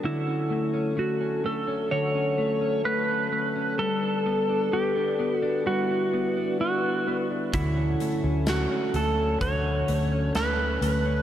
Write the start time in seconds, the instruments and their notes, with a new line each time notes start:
Already playing: clean electric guitar G3 B3 D4
0.03 clean electric guitar D3 F#4, french horn section D3 F#3 A3 C#4 A4, electric slide guitar E4
0.27 clean electric guitar C#4
0.50 clean electric guitar A3
0.73 clean electric guitar C#4
0.97 clean electric guitar A3, electric slide guitar F#4
1.21 clean electric guitar C#4
1.44 clean electric guitar A3, electric slide guitar A4
1.67 clean electric guitar C#4
1.91 clean electric guitar D3 F#4, electric slide guitar C#5
2.15 clean electric guitar C#4
2.38 clean electric guitar A3
2.61 clean electric guitar C#4
2.85 clean electric guitar A3, electric slide guitar B4
3.09 clean electric guitar C#4
3.32 clean electric guitar A3
3.56 clean electric guitar C#4
3.78 french horn section D3 G3 B3 B4, clean electric guitar G3, electric slide guitar A4
4.03 clean electric guitar D4
4.26 clean electric guitar B3
4.49 clean electric guitar D4
4.72 clean electric guitar B3, electric slide guitar G4
4.96 clean electric guitar D4
5.19 clean electric guitar B3
5.33 electric slide guitar F#4
5.42 clean electric guitar D4
5.66 clean electric guitar G3 F#4, french horn section E4, electric slide guitar F#4
5.90 clean electric guitar D4
6.13 clean electric guitar B3
6.37 clean electric guitar D4
6.60 clean electric guitar B3, electric slide guitar F#4
6.84 clean electric guitar D4
7.07 clean electric guitar B3
7.31 clean electric guitar D4
7.53 picked electric bass D2, clean electric guitar D3 F#4, french horn section F#3 A3 C#4 A4, electric slide guitar E4, kick, closed hi-hat
7.77 clean electric guitar C#4
8.00 clean electric guitar A3, closed hi-hat
8.24 picked electric bass D2, clean electric guitar C#4
8.47 clean electric guitar A3, electric slide guitar F#4, snare, closed hi-hat
8.71 clean electric guitar C#4
8.94 picked electric bass D2, clean electric guitar A3, electric slide guitar A4, closed hi-hat
9.18 clean electric guitar C#4
9.41 picked electric bass D2, clean electric guitar D3 F#4, french horn section C#4, electric slide guitar C#5, kick, closed hi-hat
9.65 clean electric guitar C#4
9.88 picked electric bass D2, clean electric guitar A3, closed hi-hat
10.12 clean electric guitar C#4
10.35 picked electric bass D2, clean electric guitar A3, electric slide guitar B4, snare, closed hi-hat
10.59 clean electric guitar C#4
10.81 picked electric bass D2, clean electric guitar A3, closed hi-hat
11.05 clean electric guitar C#4